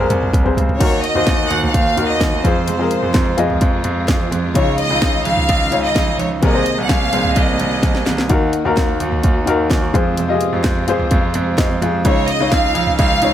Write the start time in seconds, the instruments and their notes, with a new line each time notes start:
Already playing: string section A#2 G#3 C4, upright piano C3 C4, violin section C5
0.00 upright piano G#4 A#4
0.10 grand piano C2, closed hi-hat, mid tom
0.23 mid tom
0.33 grand piano C2, kick, closed hi-hat, floor tom
0.44 upright piano C4 G#4 C5, floor tom
0.57 grand piano C#2, closed hi-hat, floor tom
0.69 floor tom
0.79 grand piano D#2, string section D#3 A#3 F#4, upright piano D#3 D#4 F#4 A#4, steel-string acoustic guitar D#3 A#3 D#4 F#4, violin section C#5, kick, closed hi-hat, crash
1.03 violin section D#5, closed hi-hat
1.15 grand piano D#2, steel-string acoustic guitar A#3 D#4 F#4, upright piano D#4 F#4 C5
1.27 grand piano D#2, kick, snare, closed hi-hat
1.49 grand piano D#2, steel-string acoustic guitar D#3 A#3 D#4 F#4, violin section F#5, closed hi-hat
1.63 violin section F#5, floor tom
1.73 grand piano D#2, violin section F5, kick, closed hi-hat
1.97 grand piano D#2, upright piano D#4 F#4 A#4, closed hi-hat
2.09 violin section D#5
2.19 grand piano D#2, steel-string acoustic guitar D#3 A#3 D#4 F#4, kick, snare, closed hi-hat
2.32 steel-string acoustic guitar A#3 D#4 F#4
2.43 grand piano F2, string section C3 G#3 F4, steel-string acoustic guitar F3 G#3 C4 G#4, upright piano F4 G#4 C5, violin section C5, kick, closed hi-hat
2.67 steel-string acoustic guitar F2 C3 F3 G#3 C4 G#4, closed hi-hat
2.78 upright piano F4 G#4 A#4
2.91 closed hi-hat
3.02 grand piano F2, steel-string acoustic guitar F3 G#3 C4 G#4
3.14 grand piano F2, kick, snare, closed hi-hat
3.37 grand piano F2, steel-string acoustic guitar F3 G#3 C4, upright piano F4 G#4 D#5, closed hi-hat
3.41 steel-string acoustic guitar G#4
3.50 floor tom
3.61 grand piano F2, kick, closed hi-hat
3.84 grand piano F2, closed hi-hat
4.08 grand piano F2, steel-string acoustic guitar F3 G#3 C4 G#4, kick, snare, closed hi-hat
4.19 steel-string acoustic guitar F3 G#3 C4 G#4
4.30 grand piano F2, steel-string acoustic guitar F3 G#3 C4 G#4, closed hi-hat
4.54 grand piano C#2, steel-string acoustic guitar C#3 F3 G#3 D#4 G#4, upright piano C#3 D#4 F4 C#5, string section D#3 C#4, violin section C#5, kick, closed hi-hat
4.78 violin section D#5, closed hi-hat
4.89 grand piano C#2, steel-string acoustic guitar G#3 D#4 G#4, upright piano D#4 F4 D#5
5.02 grand piano C#2, kick, snare, closed hi-hat
5.24 grand piano C#2, steel-string acoustic guitar F3 G#3 D#4 G#4, violin section F5, closed hi-hat
5.37 floor tom
5.49 grand piano C#2, kick, closed hi-hat
5.71 grand piano C#2, upright piano D#4 F4 C#5, closed hi-hat
5.86 violin section D#5
5.95 grand piano C#2, steel-string acoustic guitar F3 G#3 D#4 G#4, kick, snare, closed hi-hat
6.06 steel-string acoustic guitar G#3 D#4 G#4
6.18 grand piano C#2, steel-string acoustic guitar F3 G#3 D#4 G#4, violin section C#5, closed hi-hat
6.42 grand piano C2, steel-string acoustic guitar C3 D#3 A#3 C4 G#4, upright piano C3 C4 G#4 A#4, string section C3 A#3 G#4, violin section D#5, kick, closed hi-hat
6.53 upright piano C4 G#4 C5
6.66 closed hi-hat
6.77 grand piano C2, steel-string acoustic guitar A#3 C4 G#4
6.83 violin section F#5
6.89 grand piano C2, violin section F5, kick, snare, closed hi-hat
7.12 grand piano C2, steel-string acoustic guitar D#3 A#3 C4 G#4, upright piano C4 G#4 C5, closed hi-hat
7.25 floor tom
7.36 grand piano C2, violin section D#5, kick, closed hi-hat
7.59 grand piano C2, closed hi-hat
7.82 grand piano C2, steel-string acoustic guitar D#3 A#3 C4 G#4, kick, snare, closed hi-hat
7.94 steel-string acoustic guitar A#3 C4 G#4, snare
8.06 grand piano C2, steel-string acoustic guitar D#3 A#3 C4 G#4, snare, closed hi-hat
8.18 snare
8.29 grand piano D#2, upright piano D#3 D#4 F#4 A#4, steel-string acoustic guitar D#3 A#3 D#4 F#4, string section D#3 A#3 F#4, kick, closed hi-hat
8.53 closed hi-hat
8.65 grand piano D#2, steel-string acoustic guitar A#3 D#4 F#4, upright piano D#4 F#4 A#4
8.77 grand piano D#2, kick, snare, closed hi-hat
9.00 grand piano D#2, steel-string acoustic guitar D#3 A#3 D#4 F#4, closed hi-hat
9.12 floor tom
9.23 grand piano D#2, kick, closed hi-hat
9.46 grand piano D#2, upright piano D#4 F#4 A#4, closed hi-hat
9.70 grand piano D#2, steel-string acoustic guitar D#3 A#3 D#4 F#4, kick, snare, closed hi-hat
9.81 steel-string acoustic guitar A#3 D#4 F#4
9.93 grand piano F2, string section C3 G#3 F4, steel-string acoustic guitar F3 G#3 C4 F4, upright piano F4 G#4 C5, kick, closed hi-hat
10.17 steel-string acoustic guitar F2 C3 F3 G#3 C4 F4, closed hi-hat
10.28 upright piano F4 G4 D#5
10.35 upright piano G#4
10.41 closed hi-hat
10.52 grand piano F2, steel-string acoustic guitar F3 G#3 C4 F4
10.64 grand piano F2, kick, snare, closed hi-hat
10.87 grand piano F2, steel-string acoustic guitar F3 G#3 C4 F4, upright piano F4 G#4 C5, closed hi-hat
10.99 floor tom
11.11 grand piano F2, kick, closed hi-hat
11.34 grand piano F2, closed hi-hat
11.57 grand piano F2, steel-string acoustic guitar F3 G#3 C4 F4, upright piano D#5, kick, snare, closed hi-hat
11.69 steel-string acoustic guitar F3 G#3 C4 F4
11.80 grand piano F2, steel-string acoustic guitar F3 G#3 C4 F4, upright piano G#4 F5, closed hi-hat
12.04 grand piano C#2, steel-string acoustic guitar C#3 F3 G#3 D#4 F4, string section C#3 F3 D#4, upright piano C#3 D#4 F4 C#5, violin section C#5, kick, closed hi-hat
12.28 violin section D#5, closed hi-hat
12.39 grand piano C#2, steel-string acoustic guitar G#3 D#4 F4, upright piano D#4 F4 C#5
12.52 grand piano C#2, violin section F5, kick, snare, closed hi-hat
12.75 grand piano C#2, steel-string acoustic guitar F3 G#3 D#4 F4, closed hi-hat
12.87 floor tom
12.99 grand piano C#2, violin section F5, kick, closed hi-hat
13.22 grand piano C#2, upright piano D#4 F4 C#5, closed hi-hat